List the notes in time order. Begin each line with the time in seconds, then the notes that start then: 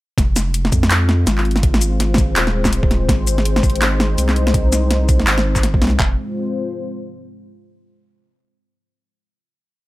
0.18 F1 G#3, kick, snare, closed hi-hat
0.36 snare, closed hi-hat, shaker
0.42 F4
0.50 C4
0.54 closed hi-hat
0.65 snare
0.72 F2, kick, closed hi-hat, shaker
0.83 snare
0.91 clap, closed hi-hat
1.09 snare
1.27 G#1, snare, closed hi-hat, shaker
1.38 clap
1.45 closed hi-hat
1.50 C5, closed hi-hat
1.56 snare, closed hi-hat
1.63 kick, closed hi-hat
1.74 snare
1.81 closed hi-hat, shaker
2.00 snare, closed hi-hat
2.14 kick, snare, closed hi-hat, shaker
2.36 D#1, clap, closed hi-hat
2.47 snare
2.65 kick, clap, snare, shaker
2.73 closed hi-hat
2.83 kick
2.91 snare, closed hi-hat
3.09 G#1, kick, snare, closed hi-hat
3.27 closed hi-hat, shaker
3.38 snare
3.45 closed hi-hat
3.52 D#4
3.56 snare
3.63 G#1, kick, closed hi-hat, shaker
3.70 closed hi-hat
3.76 closed hi-hat
3.82 clap, snare, closed hi-hat
4.00 snare
4.18 C2, closed hi-hat, shaker
4.29 clap, snare
4.36 closed hi-hat
4.47 snare
4.54 kick, closed hi-hat
4.72 snare, closed hi-hat, shaker
4.91 snare, closed hi-hat
5.09 kick, closed hi-hat, shaker
5.20 snare
5.27 G#1, clap, closed hi-hat
5.38 snare
5.56 kick, clap, shaker
5.63 snare, closed hi-hat
5.74 kick
5.81 C2, snare, closed hi-hat
5.84 snare
5.87 snare
5.90 snare
6.00 F1 G#3, kick, clap
6.06 C4
6.11 F4
6.17 C5